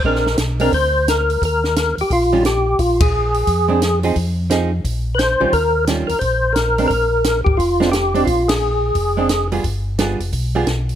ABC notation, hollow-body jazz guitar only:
X:1
M:4/4
L:1/8
Q:"Swing" 1/4=175
K:Bbmix
V:1 name="Hollow-body jazz guitar"
[A,CD] z2 [A,CD] z4 | z4 z [E,G,_DF] z2 | z4 z [A,CD] z [F,CEA] | z2 [F,CEA] z4 [E,G,_DF] |
z2 [E,G,_DF] z4 [A,C=D] | z4 z [A,CD] z [A,CD] | z4 z [A,CD] z [G,_CFA] | z2 [G,=B,FA] z2 [G,B,FA] z2 |]